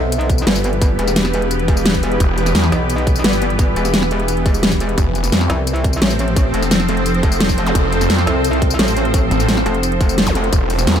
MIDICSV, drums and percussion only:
0, 0, Header, 1, 2, 480
1, 0, Start_track
1, 0, Tempo, 346821
1, 1128, Time_signature, 4, 2, 24, 8
1, 15224, End_track
2, 0, Start_track
2, 0, Title_t, "Drums"
2, 168, Note_on_c, 9, 42, 105
2, 168, Note_on_c, 9, 54, 50
2, 288, Note_off_c, 9, 42, 0
2, 288, Note_on_c, 9, 42, 38
2, 307, Note_off_c, 9, 54, 0
2, 408, Note_off_c, 9, 42, 0
2, 408, Note_on_c, 9, 36, 108
2, 408, Note_on_c, 9, 42, 71
2, 408, Note_on_c, 9, 54, 28
2, 528, Note_off_c, 9, 54, 0
2, 528, Note_on_c, 9, 54, 64
2, 546, Note_off_c, 9, 36, 0
2, 547, Note_off_c, 9, 42, 0
2, 648, Note_on_c, 9, 38, 119
2, 648, Note_on_c, 9, 42, 96
2, 667, Note_off_c, 9, 54, 0
2, 768, Note_on_c, 9, 54, 50
2, 787, Note_off_c, 9, 38, 0
2, 787, Note_off_c, 9, 42, 0
2, 888, Note_off_c, 9, 54, 0
2, 888, Note_on_c, 9, 42, 68
2, 888, Note_on_c, 9, 54, 28
2, 1009, Note_off_c, 9, 42, 0
2, 1009, Note_on_c, 9, 42, 38
2, 1027, Note_off_c, 9, 54, 0
2, 1128, Note_off_c, 9, 42, 0
2, 1128, Note_on_c, 9, 36, 127
2, 1128, Note_on_c, 9, 42, 97
2, 1128, Note_on_c, 9, 54, 51
2, 1266, Note_off_c, 9, 36, 0
2, 1267, Note_off_c, 9, 42, 0
2, 1267, Note_off_c, 9, 54, 0
2, 1368, Note_on_c, 9, 42, 69
2, 1368, Note_on_c, 9, 54, 27
2, 1488, Note_off_c, 9, 42, 0
2, 1488, Note_off_c, 9, 54, 0
2, 1488, Note_on_c, 9, 40, 38
2, 1488, Note_on_c, 9, 42, 38
2, 1488, Note_on_c, 9, 54, 59
2, 1608, Note_off_c, 9, 42, 0
2, 1608, Note_off_c, 9, 54, 0
2, 1608, Note_on_c, 9, 38, 120
2, 1608, Note_on_c, 9, 42, 96
2, 1608, Note_on_c, 9, 54, 49
2, 1626, Note_off_c, 9, 40, 0
2, 1728, Note_on_c, 9, 40, 62
2, 1746, Note_off_c, 9, 38, 0
2, 1746, Note_off_c, 9, 42, 0
2, 1746, Note_off_c, 9, 54, 0
2, 1848, Note_on_c, 9, 42, 65
2, 1848, Note_on_c, 9, 54, 28
2, 1866, Note_off_c, 9, 40, 0
2, 1968, Note_off_c, 9, 42, 0
2, 1968, Note_on_c, 9, 42, 38
2, 1986, Note_off_c, 9, 54, 0
2, 2088, Note_off_c, 9, 42, 0
2, 2088, Note_on_c, 9, 42, 100
2, 2088, Note_on_c, 9, 54, 48
2, 2208, Note_off_c, 9, 42, 0
2, 2208, Note_on_c, 9, 42, 37
2, 2226, Note_off_c, 9, 54, 0
2, 2328, Note_off_c, 9, 42, 0
2, 2328, Note_on_c, 9, 36, 116
2, 2328, Note_on_c, 9, 42, 67
2, 2328, Note_on_c, 9, 54, 26
2, 2448, Note_off_c, 9, 54, 0
2, 2448, Note_on_c, 9, 54, 56
2, 2466, Note_off_c, 9, 36, 0
2, 2466, Note_off_c, 9, 42, 0
2, 2568, Note_on_c, 9, 38, 127
2, 2568, Note_on_c, 9, 42, 96
2, 2587, Note_off_c, 9, 54, 0
2, 2688, Note_on_c, 9, 36, 66
2, 2688, Note_on_c, 9, 54, 51
2, 2706, Note_off_c, 9, 38, 0
2, 2706, Note_off_c, 9, 42, 0
2, 2808, Note_off_c, 9, 54, 0
2, 2808, Note_on_c, 9, 42, 65
2, 2808, Note_on_c, 9, 54, 26
2, 2826, Note_off_c, 9, 36, 0
2, 2928, Note_off_c, 9, 42, 0
2, 2928, Note_on_c, 9, 42, 38
2, 2946, Note_off_c, 9, 54, 0
2, 3048, Note_off_c, 9, 42, 0
2, 3048, Note_on_c, 9, 36, 121
2, 3048, Note_on_c, 9, 42, 90
2, 3048, Note_on_c, 9, 54, 48
2, 3186, Note_off_c, 9, 36, 0
2, 3186, Note_off_c, 9, 42, 0
2, 3186, Note_off_c, 9, 54, 0
2, 3288, Note_on_c, 9, 42, 66
2, 3288, Note_on_c, 9, 54, 27
2, 3408, Note_off_c, 9, 42, 0
2, 3408, Note_off_c, 9, 54, 0
2, 3408, Note_on_c, 9, 40, 38
2, 3408, Note_on_c, 9, 42, 36
2, 3408, Note_on_c, 9, 54, 56
2, 3528, Note_off_c, 9, 42, 0
2, 3528, Note_off_c, 9, 54, 0
2, 3528, Note_on_c, 9, 38, 127
2, 3528, Note_on_c, 9, 42, 95
2, 3528, Note_on_c, 9, 54, 46
2, 3547, Note_off_c, 9, 40, 0
2, 3648, Note_on_c, 9, 40, 57
2, 3667, Note_off_c, 9, 38, 0
2, 3667, Note_off_c, 9, 42, 0
2, 3667, Note_off_c, 9, 54, 0
2, 3768, Note_on_c, 9, 42, 65
2, 3768, Note_on_c, 9, 54, 27
2, 3786, Note_off_c, 9, 40, 0
2, 3906, Note_off_c, 9, 42, 0
2, 3906, Note_off_c, 9, 54, 0
2, 4008, Note_on_c, 9, 42, 96
2, 4008, Note_on_c, 9, 54, 48
2, 4128, Note_off_c, 9, 42, 0
2, 4128, Note_on_c, 9, 42, 36
2, 4146, Note_off_c, 9, 54, 0
2, 4248, Note_off_c, 9, 42, 0
2, 4248, Note_on_c, 9, 36, 113
2, 4248, Note_on_c, 9, 42, 64
2, 4248, Note_on_c, 9, 54, 25
2, 4368, Note_off_c, 9, 54, 0
2, 4368, Note_on_c, 9, 54, 58
2, 4386, Note_off_c, 9, 36, 0
2, 4386, Note_off_c, 9, 42, 0
2, 4488, Note_on_c, 9, 38, 127
2, 4488, Note_on_c, 9, 42, 93
2, 4507, Note_off_c, 9, 54, 0
2, 4608, Note_on_c, 9, 54, 51
2, 4627, Note_off_c, 9, 38, 0
2, 4627, Note_off_c, 9, 42, 0
2, 4728, Note_off_c, 9, 54, 0
2, 4728, Note_on_c, 9, 42, 65
2, 4728, Note_on_c, 9, 54, 26
2, 4848, Note_off_c, 9, 42, 0
2, 4848, Note_on_c, 9, 42, 37
2, 4867, Note_off_c, 9, 54, 0
2, 4968, Note_off_c, 9, 42, 0
2, 4968, Note_on_c, 9, 36, 124
2, 4968, Note_on_c, 9, 42, 92
2, 4968, Note_on_c, 9, 54, 49
2, 5106, Note_off_c, 9, 36, 0
2, 5106, Note_off_c, 9, 42, 0
2, 5106, Note_off_c, 9, 54, 0
2, 5208, Note_on_c, 9, 42, 62
2, 5208, Note_on_c, 9, 54, 27
2, 5328, Note_off_c, 9, 42, 0
2, 5328, Note_off_c, 9, 54, 0
2, 5328, Note_on_c, 9, 40, 34
2, 5328, Note_on_c, 9, 42, 36
2, 5328, Note_on_c, 9, 54, 58
2, 5448, Note_off_c, 9, 42, 0
2, 5448, Note_off_c, 9, 54, 0
2, 5448, Note_on_c, 9, 38, 127
2, 5448, Note_on_c, 9, 42, 93
2, 5448, Note_on_c, 9, 54, 48
2, 5466, Note_off_c, 9, 40, 0
2, 5567, Note_on_c, 9, 40, 57
2, 5586, Note_off_c, 9, 38, 0
2, 5586, Note_off_c, 9, 42, 0
2, 5586, Note_off_c, 9, 54, 0
2, 5688, Note_on_c, 9, 42, 64
2, 5688, Note_on_c, 9, 54, 27
2, 5705, Note_off_c, 9, 40, 0
2, 5807, Note_off_c, 9, 42, 0
2, 5807, Note_on_c, 9, 42, 35
2, 5826, Note_off_c, 9, 54, 0
2, 5927, Note_off_c, 9, 42, 0
2, 5927, Note_on_c, 9, 42, 92
2, 5927, Note_on_c, 9, 54, 49
2, 6048, Note_off_c, 9, 42, 0
2, 6048, Note_on_c, 9, 42, 35
2, 6066, Note_off_c, 9, 54, 0
2, 6168, Note_off_c, 9, 42, 0
2, 6168, Note_on_c, 9, 36, 112
2, 6168, Note_on_c, 9, 42, 61
2, 6168, Note_on_c, 9, 54, 28
2, 6288, Note_off_c, 9, 54, 0
2, 6288, Note_on_c, 9, 54, 56
2, 6306, Note_off_c, 9, 36, 0
2, 6306, Note_off_c, 9, 42, 0
2, 6408, Note_on_c, 9, 38, 122
2, 6408, Note_on_c, 9, 42, 92
2, 6426, Note_off_c, 9, 54, 0
2, 6527, Note_on_c, 9, 54, 50
2, 6528, Note_on_c, 9, 36, 65
2, 6546, Note_off_c, 9, 38, 0
2, 6546, Note_off_c, 9, 42, 0
2, 6647, Note_off_c, 9, 54, 0
2, 6647, Note_on_c, 9, 42, 64
2, 6647, Note_on_c, 9, 54, 28
2, 6666, Note_off_c, 9, 36, 0
2, 6768, Note_off_c, 9, 42, 0
2, 6768, Note_on_c, 9, 42, 34
2, 6786, Note_off_c, 9, 54, 0
2, 6888, Note_off_c, 9, 42, 0
2, 6888, Note_on_c, 9, 36, 119
2, 6888, Note_on_c, 9, 42, 86
2, 6888, Note_on_c, 9, 54, 50
2, 7026, Note_off_c, 9, 36, 0
2, 7026, Note_off_c, 9, 42, 0
2, 7026, Note_off_c, 9, 54, 0
2, 7128, Note_on_c, 9, 42, 65
2, 7128, Note_on_c, 9, 54, 29
2, 7247, Note_off_c, 9, 42, 0
2, 7247, Note_off_c, 9, 54, 0
2, 7247, Note_on_c, 9, 40, 33
2, 7247, Note_on_c, 9, 42, 36
2, 7247, Note_on_c, 9, 54, 62
2, 7368, Note_off_c, 9, 42, 0
2, 7368, Note_off_c, 9, 54, 0
2, 7368, Note_on_c, 9, 38, 117
2, 7368, Note_on_c, 9, 42, 90
2, 7368, Note_on_c, 9, 54, 50
2, 7386, Note_off_c, 9, 40, 0
2, 7487, Note_on_c, 9, 40, 53
2, 7506, Note_off_c, 9, 38, 0
2, 7506, Note_off_c, 9, 42, 0
2, 7506, Note_off_c, 9, 54, 0
2, 7608, Note_on_c, 9, 42, 60
2, 7608, Note_on_c, 9, 54, 28
2, 7626, Note_off_c, 9, 40, 0
2, 7746, Note_off_c, 9, 42, 0
2, 7746, Note_off_c, 9, 54, 0
2, 7848, Note_on_c, 9, 42, 90
2, 7848, Note_on_c, 9, 54, 52
2, 7968, Note_off_c, 9, 42, 0
2, 7968, Note_on_c, 9, 42, 36
2, 7987, Note_off_c, 9, 54, 0
2, 8088, Note_off_c, 9, 42, 0
2, 8088, Note_on_c, 9, 36, 106
2, 8088, Note_on_c, 9, 42, 67
2, 8088, Note_on_c, 9, 54, 28
2, 8208, Note_off_c, 9, 54, 0
2, 8208, Note_on_c, 9, 54, 63
2, 8226, Note_off_c, 9, 36, 0
2, 8226, Note_off_c, 9, 42, 0
2, 8328, Note_on_c, 9, 38, 123
2, 8328, Note_on_c, 9, 42, 96
2, 8346, Note_off_c, 9, 54, 0
2, 8448, Note_on_c, 9, 54, 51
2, 8466, Note_off_c, 9, 38, 0
2, 8466, Note_off_c, 9, 42, 0
2, 8568, Note_off_c, 9, 54, 0
2, 8568, Note_on_c, 9, 42, 63
2, 8568, Note_on_c, 9, 54, 29
2, 8688, Note_off_c, 9, 42, 0
2, 8688, Note_on_c, 9, 42, 36
2, 8707, Note_off_c, 9, 54, 0
2, 8808, Note_off_c, 9, 42, 0
2, 8808, Note_on_c, 9, 36, 117
2, 8808, Note_on_c, 9, 42, 89
2, 8808, Note_on_c, 9, 54, 53
2, 8946, Note_off_c, 9, 36, 0
2, 8947, Note_off_c, 9, 42, 0
2, 8947, Note_off_c, 9, 54, 0
2, 9049, Note_on_c, 9, 42, 66
2, 9049, Note_on_c, 9, 54, 29
2, 9169, Note_off_c, 9, 42, 0
2, 9169, Note_off_c, 9, 54, 0
2, 9169, Note_on_c, 9, 40, 33
2, 9169, Note_on_c, 9, 42, 38
2, 9169, Note_on_c, 9, 54, 61
2, 9288, Note_off_c, 9, 42, 0
2, 9288, Note_off_c, 9, 54, 0
2, 9288, Note_on_c, 9, 38, 118
2, 9288, Note_on_c, 9, 42, 92
2, 9288, Note_on_c, 9, 54, 52
2, 9307, Note_off_c, 9, 40, 0
2, 9408, Note_on_c, 9, 40, 56
2, 9427, Note_off_c, 9, 38, 0
2, 9427, Note_off_c, 9, 42, 0
2, 9427, Note_off_c, 9, 54, 0
2, 9528, Note_on_c, 9, 42, 65
2, 9528, Note_on_c, 9, 54, 28
2, 9547, Note_off_c, 9, 40, 0
2, 9648, Note_off_c, 9, 42, 0
2, 9648, Note_on_c, 9, 42, 37
2, 9667, Note_off_c, 9, 54, 0
2, 9768, Note_off_c, 9, 42, 0
2, 9768, Note_on_c, 9, 42, 93
2, 9768, Note_on_c, 9, 54, 52
2, 9888, Note_off_c, 9, 42, 0
2, 9888, Note_on_c, 9, 42, 36
2, 9906, Note_off_c, 9, 54, 0
2, 10008, Note_off_c, 9, 42, 0
2, 10008, Note_on_c, 9, 36, 109
2, 10008, Note_on_c, 9, 42, 67
2, 10008, Note_on_c, 9, 54, 30
2, 10128, Note_off_c, 9, 54, 0
2, 10128, Note_on_c, 9, 54, 66
2, 10146, Note_off_c, 9, 36, 0
2, 10146, Note_off_c, 9, 42, 0
2, 10248, Note_on_c, 9, 38, 117
2, 10248, Note_on_c, 9, 42, 93
2, 10266, Note_off_c, 9, 54, 0
2, 10368, Note_on_c, 9, 36, 60
2, 10368, Note_on_c, 9, 54, 54
2, 10386, Note_off_c, 9, 38, 0
2, 10386, Note_off_c, 9, 42, 0
2, 10488, Note_off_c, 9, 54, 0
2, 10488, Note_on_c, 9, 42, 66
2, 10488, Note_on_c, 9, 54, 29
2, 10506, Note_off_c, 9, 36, 0
2, 10608, Note_off_c, 9, 42, 0
2, 10608, Note_on_c, 9, 42, 37
2, 10626, Note_off_c, 9, 54, 0
2, 10728, Note_off_c, 9, 42, 0
2, 10728, Note_on_c, 9, 36, 113
2, 10728, Note_on_c, 9, 42, 95
2, 10728, Note_on_c, 9, 54, 55
2, 10866, Note_off_c, 9, 36, 0
2, 10866, Note_off_c, 9, 42, 0
2, 10866, Note_off_c, 9, 54, 0
2, 10968, Note_on_c, 9, 42, 66
2, 10968, Note_on_c, 9, 54, 31
2, 11088, Note_off_c, 9, 42, 0
2, 11088, Note_off_c, 9, 54, 0
2, 11088, Note_on_c, 9, 40, 34
2, 11088, Note_on_c, 9, 42, 38
2, 11088, Note_on_c, 9, 54, 60
2, 11208, Note_off_c, 9, 42, 0
2, 11208, Note_off_c, 9, 54, 0
2, 11208, Note_on_c, 9, 38, 113
2, 11208, Note_on_c, 9, 42, 95
2, 11208, Note_on_c, 9, 54, 50
2, 11226, Note_off_c, 9, 40, 0
2, 11328, Note_on_c, 9, 40, 55
2, 11346, Note_off_c, 9, 38, 0
2, 11346, Note_off_c, 9, 42, 0
2, 11346, Note_off_c, 9, 54, 0
2, 11448, Note_on_c, 9, 42, 68
2, 11448, Note_on_c, 9, 54, 28
2, 11466, Note_off_c, 9, 40, 0
2, 11586, Note_off_c, 9, 42, 0
2, 11586, Note_off_c, 9, 54, 0
2, 11687, Note_on_c, 9, 42, 99
2, 11687, Note_on_c, 9, 54, 55
2, 11808, Note_off_c, 9, 42, 0
2, 11808, Note_on_c, 9, 42, 37
2, 11826, Note_off_c, 9, 54, 0
2, 11928, Note_off_c, 9, 42, 0
2, 11928, Note_on_c, 9, 36, 106
2, 11928, Note_on_c, 9, 42, 72
2, 11928, Note_on_c, 9, 54, 28
2, 12048, Note_off_c, 9, 54, 0
2, 12048, Note_on_c, 9, 54, 67
2, 12066, Note_off_c, 9, 36, 0
2, 12066, Note_off_c, 9, 42, 0
2, 12167, Note_on_c, 9, 38, 114
2, 12167, Note_on_c, 9, 42, 97
2, 12186, Note_off_c, 9, 54, 0
2, 12287, Note_on_c, 9, 54, 57
2, 12306, Note_off_c, 9, 38, 0
2, 12306, Note_off_c, 9, 42, 0
2, 12408, Note_off_c, 9, 54, 0
2, 12408, Note_on_c, 9, 42, 68
2, 12408, Note_on_c, 9, 54, 29
2, 12527, Note_off_c, 9, 42, 0
2, 12527, Note_on_c, 9, 42, 38
2, 12546, Note_off_c, 9, 54, 0
2, 12648, Note_off_c, 9, 42, 0
2, 12648, Note_on_c, 9, 36, 115
2, 12648, Note_on_c, 9, 42, 96
2, 12648, Note_on_c, 9, 54, 53
2, 12786, Note_off_c, 9, 36, 0
2, 12786, Note_off_c, 9, 42, 0
2, 12786, Note_off_c, 9, 54, 0
2, 12888, Note_on_c, 9, 42, 70
2, 12888, Note_on_c, 9, 54, 29
2, 13008, Note_off_c, 9, 42, 0
2, 13008, Note_off_c, 9, 54, 0
2, 13008, Note_on_c, 9, 40, 37
2, 13008, Note_on_c, 9, 42, 37
2, 13008, Note_on_c, 9, 54, 60
2, 13128, Note_off_c, 9, 42, 0
2, 13128, Note_off_c, 9, 54, 0
2, 13128, Note_on_c, 9, 38, 118
2, 13128, Note_on_c, 9, 42, 100
2, 13128, Note_on_c, 9, 54, 53
2, 13146, Note_off_c, 9, 40, 0
2, 13248, Note_on_c, 9, 40, 60
2, 13266, Note_off_c, 9, 38, 0
2, 13266, Note_off_c, 9, 42, 0
2, 13266, Note_off_c, 9, 54, 0
2, 13368, Note_on_c, 9, 42, 71
2, 13368, Note_on_c, 9, 54, 28
2, 13386, Note_off_c, 9, 40, 0
2, 13487, Note_off_c, 9, 42, 0
2, 13487, Note_on_c, 9, 42, 39
2, 13506, Note_off_c, 9, 54, 0
2, 13608, Note_off_c, 9, 42, 0
2, 13608, Note_on_c, 9, 42, 99
2, 13608, Note_on_c, 9, 54, 52
2, 13728, Note_off_c, 9, 42, 0
2, 13728, Note_on_c, 9, 42, 40
2, 13746, Note_off_c, 9, 54, 0
2, 13848, Note_off_c, 9, 42, 0
2, 13848, Note_on_c, 9, 36, 106
2, 13848, Note_on_c, 9, 42, 69
2, 13848, Note_on_c, 9, 54, 29
2, 13967, Note_off_c, 9, 54, 0
2, 13967, Note_on_c, 9, 54, 63
2, 13986, Note_off_c, 9, 36, 0
2, 13986, Note_off_c, 9, 42, 0
2, 14088, Note_on_c, 9, 38, 112
2, 14088, Note_on_c, 9, 42, 97
2, 14106, Note_off_c, 9, 54, 0
2, 14208, Note_on_c, 9, 36, 59
2, 14208, Note_on_c, 9, 54, 52
2, 14226, Note_off_c, 9, 38, 0
2, 14226, Note_off_c, 9, 42, 0
2, 14328, Note_off_c, 9, 54, 0
2, 14328, Note_on_c, 9, 42, 68
2, 14328, Note_on_c, 9, 54, 27
2, 14346, Note_off_c, 9, 36, 0
2, 14448, Note_off_c, 9, 42, 0
2, 14448, Note_on_c, 9, 42, 38
2, 14466, Note_off_c, 9, 54, 0
2, 14568, Note_off_c, 9, 42, 0
2, 14568, Note_on_c, 9, 36, 112
2, 14568, Note_on_c, 9, 42, 101
2, 14568, Note_on_c, 9, 54, 50
2, 14706, Note_off_c, 9, 36, 0
2, 14706, Note_off_c, 9, 42, 0
2, 14706, Note_off_c, 9, 54, 0
2, 14808, Note_on_c, 9, 42, 72
2, 14808, Note_on_c, 9, 51, 73
2, 14808, Note_on_c, 9, 54, 29
2, 14928, Note_off_c, 9, 42, 0
2, 14928, Note_off_c, 9, 54, 0
2, 14928, Note_on_c, 9, 40, 37
2, 14928, Note_on_c, 9, 42, 40
2, 14928, Note_on_c, 9, 54, 60
2, 14946, Note_off_c, 9, 51, 0
2, 15047, Note_off_c, 9, 42, 0
2, 15047, Note_off_c, 9, 54, 0
2, 15047, Note_on_c, 9, 38, 116
2, 15047, Note_on_c, 9, 42, 97
2, 15047, Note_on_c, 9, 54, 48
2, 15066, Note_off_c, 9, 40, 0
2, 15168, Note_on_c, 9, 40, 60
2, 15186, Note_off_c, 9, 38, 0
2, 15186, Note_off_c, 9, 42, 0
2, 15186, Note_off_c, 9, 54, 0
2, 15224, Note_off_c, 9, 40, 0
2, 15224, End_track
0, 0, End_of_file